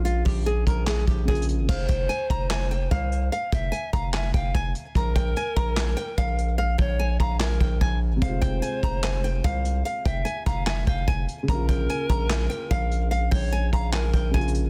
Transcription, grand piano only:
\new Staff \with { instrumentName = "Grand piano" } { \time 4/4 \key f \minor \tempo 4 = 147 <des bes f'>2. <des bes f'>4 | r1 | r1 | r1 |
r1 | <c aes f'>1~ | <c aes f'>1 | <des bes f'>1~ |
<des bes f'>2. <des bes f'>4 | }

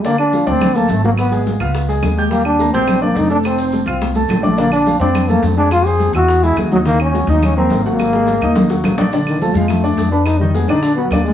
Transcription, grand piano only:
\new Staff \with { instrumentName = "Grand piano" } { \time 4/4 \key f \mixolydian \tempo 4 = 211 <d d' d''>4 <f f' f''>8 <d' d'' d'''>4 <a a' a''>4 <ges ges' ges''>8~ | <ges ges' ges''>8 <aes aes' aes''>4 <f' f'' f'''>4 <aes aes' aes''>4 <g' g'' g'''>8 | <g g' g''>4 <bes bes' bes''>8 <g' g'' g'''>4 <d' d'' d'''>4 <a a' a''>8~ | <a a' a''>8 <c' c'' c'''>4 <f' f'' f'''>4 <a a' a''>4 <d' d'' d'''>8 |
<d d' d''>4 <f f' f''>8 <d' d'' d'''>4 <a a' a''>4 <aes aes' aes''>8~ | <aes aes' aes''>8 <c' c'' c'''>4 <e' e'' e'''>4 <gis gis' gis''>4 <ees' ees'' ees'''>8 | <ees ees' ees''>4 <ges ges' ges''>8 <ees' ees'' ees'''>4 <bes bes' bes''>4 <ges ges' ges''>8~ | <ges ges' ges''>8 <aes aes' aes''>4 <ees' ees'' ees'''>4 <ges ges' ges''>4 <d' d'' d'''>8 |
<d d' d''>4 <a a' a''>8 <f f' f''>4 <d' d'' d'''>4 <ces' ces'' ces'''>8~ | <ces' ces'' ces'''>8 <ees ees' ees''>8 <aes aes' aes''>8 <d d' d''>4 <fis fis' fis''>8 <d' d'' d'''>4 | }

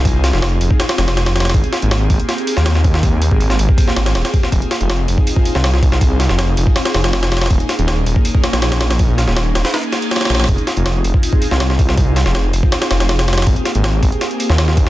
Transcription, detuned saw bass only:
\new Staff \with { instrumentName = "Detuned saw bass" } { \clef bass \time 4/4 \key f \minor \tempo 4 = 161 c,8. f,,8. f,,16 r8. f,,4. | aes,,16 r8 aes,,8. aes,,16 r4 ees,4~ ees,16~ | ees,8. aes,,8. aes,,16 r8. aes,,8 ees,,16 r8. | f,,16 r8 f,,8. f,,16 r4 c,4~ c,16~ |
c,8. f,,8. f,,16 r8. f,,4. | ees,,16 r8 ees,,8. ees,,16 r4 bes,,4~ bes,,16~ | bes,,8. ees,,8. ees,,16 r4. r16 bes,,8 | f,,16 r8 f,,8. f,,16 r4 c,4~ c,16~ |
c,8. f,,8. f,,16 r8. f,,4. | aes,,16 r8 aes,,8. aes,,16 r4 ees,4~ ees,16 | }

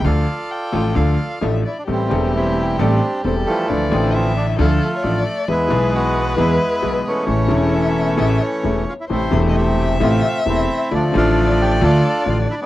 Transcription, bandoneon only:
<<
  \new Staff \with { instrumentName = "Bandoneon" } { \time 4/4 \key d \minor \tempo 4 = 133 d''2. r8 e'16 d'16 | c'4 e'4 d'4 c'8 a8~ | a8 c'8 c'8 d'8 f'4. r8 | e'4 fis'4 e'4. cis'8~ |
cis'2.~ cis'8 f'16 e'16 | e'4 g'8 g'8 f'4 e'4 | d'8 f'4 g'8 a'4 f'8 e'16 d'16 | }
  \new Staff \with { instrumentName = "Bandoneon" } { \time 4/4 \key d \minor <f' a'>2. r4 | <e g>4 <g c'>4 g4. <e f>8~ | <e f>4. r8 a2 | <gis b>4 b4 <gis b>4. <e a>8~ |
<e a>2.~ <e a>8 r8 | <a c'>2 <a c'>4 <a c'>4 | <f a>8 <a d'>4. <d' f'>4.~ <d' f'>16 <gis b>16 | }
>>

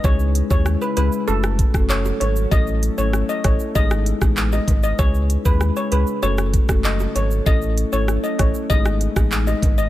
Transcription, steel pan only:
\new Staff \with { instrumentName = "Steel pan" } { \time 4/4 \key gis \phrygian \tempo 4 = 97 cis''8 r16 cis''16 r16 b'16 b'16 r16 a'8. r16 cis''16 r16 cis''16 r16 | dis''8 r16 cis''16 r16 dis''16 cis''16 r16 dis''8. r8 dis''16 r16 dis''16 | cis''8 r16 b'16 r16 cis''16 b'16 r16 cis''8. r16 dis''16 r16 cis''16 r16 | dis''8 r16 cis''16 r16 dis''16 cis''16 r16 dis''8. r8 dis''16 r16 dis''16 | }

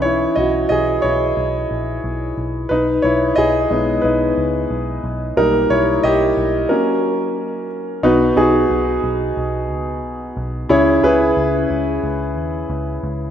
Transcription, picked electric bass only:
\new Staff \with { instrumentName = "Picked electric bass" } { \clef bass \time 4/4 \key b \major \tempo 4 = 90 b,,8 b,,8 b,,8 b,,8 b,,8 ais,,8 b,,8 b,,8 | b,,8 b,,8 b,,8 b,,8 b,,8 cis,8 b,,8 b,,8 | b,,8 b,,8 b,,8 b,,8 r2 | b,,8 b,,8 b,,8 b,,8 b,,8 cis,8 b,,8 b,,8 |
cis,8 cis,8 cis,8 cis,8 cis,8 dis,8 cis,8 cis,8 | }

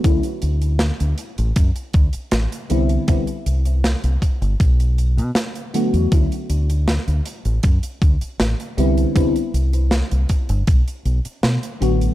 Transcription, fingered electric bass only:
\new Staff \with { instrumentName = "Fingered electric bass" } { \clef bass \time 4/4 \key d \major \tempo 4 = 79 d,16 r16 d,8 r16 d,16 r16 a,,16 fis,16 r16 d,16 r16 a,,16 r16 c,16 r16 | c,16 r16 c,8 r16 c,16 r16 g,,16 b,,8. b,16 r8. e,16 | d,16 r16 d,8 r16 d,16 r16 a,,16 fis,16 r16 d,16 r16 a,,16 r16 c,16 r16 | c,16 r16 c,8 r16 c,16 r16 g,,16 b,,16 r16 b,,16 r16 b,16 r16 a,,16 r16 | }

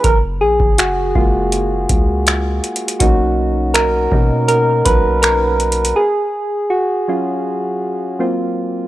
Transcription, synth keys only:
\new Staff \with { instrumentName = "Synth keys" } { \time 4/4 \key fis \major \tempo 4 = 81 << { ais'8 gis'8 fis'8 eis'2 r8 | fis'4 ais'4 ais'8 b'8 ais'4 | gis'4 fis'2 r4 | } \\ { r4. <gis ais eis'>8 r2 | <ais cis' dis'>8 r4 <ais cis' dis'>8 r2 | r4. <fis cis' eis'>4. <fis ais bis eis'>4 | } >> }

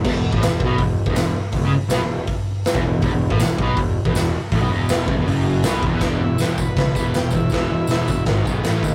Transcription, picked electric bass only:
\new Staff \with { instrumentName = "Picked electric bass" } { \clef bass \time 4/4 \key e \major \tempo 4 = 161 e,,16 e,,8 a,,16 e,,8 b,,8 e,,8 r16 e,,16 e,,8 r8 | e,,16 cis,16 r8 b,,16 e,,8 r4. e,,16 e,,8 | e,,16 e,,8 a,,16 e,,8 b,,8 e,,8 r16 e,,16 e,,8 r8 | a,,16 b,,16 e,,4 fis,,16 e,,16 fis,,4 b,,8 e,,16 e,16 |
e,,8 e,,8 e,,4 cis,8 e,,8 e,,8 e,,8 | e,,8 e,,8 e,,8 e,,8 gis,,8 b,,8 a,,8 dis,8 | }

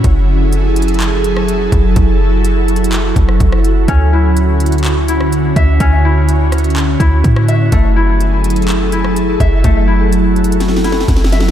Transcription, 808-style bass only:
\new Staff \with { instrumentName = "808-style bass" } { \clef bass \time 4/4 \key fis \minor \tempo 4 = 125 fis,,2.~ fis,,8 fis,,8 | fis,,2~ fis,,8 fis,,8 fis,,4 | d,2.~ d,8 d,8 | d,2~ d,8 d,8 a,4 |
fis,,2.~ fis,,8 fis,,8 | fis,,2. fis,,4 | }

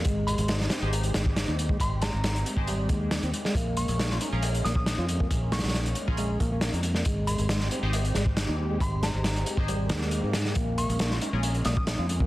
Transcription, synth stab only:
\new Staff \with { instrumentName = "Synth stab" } { \time 4/4 \key aes \major \tempo 4 = 137 r4. r16 <ees' g' aes' c''>16 r2 | r4. r16 <ees' g' aes' c''>16 r2 | r4. r16 <des' f' aes' bes'>16 r2 | r4. r16 <des' f' aes' bes'>16 r2 |
r4. r16 <ees' g' aes' c''>16 r2 | r4. r16 <ees' g' aes' c''>16 r2 | r4. r16 <des' f' aes' bes'>16 r2 | }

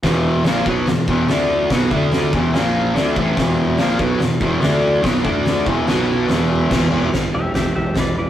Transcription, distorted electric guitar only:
\new Staff \with { instrumentName = "Distorted electric guitar" } { \clef bass \time 4/4 \key e \minor \tempo 4 = 144 <e, b, e>4 <ais, f ais>8 <b, fis b>8 <e, b,>8 <e, b, e>8 <d a d'>4 | <b, fis b>8 <d a d'>4 <e, b, e>8 <ais, eis ais>4 <d a d'>8 <a, e a>8 | <e, b, e>4 <ais, f ais>8 <b, fis b>8 <e, b,>8 <e, b, e>8 <d a d'>4 | <b, fis b>8 <d a d'>4 <e, b, e>8 <b, fis b>4 <e, b, e>4 |
<e, b, e>8 <e, b, e>8 r2. | }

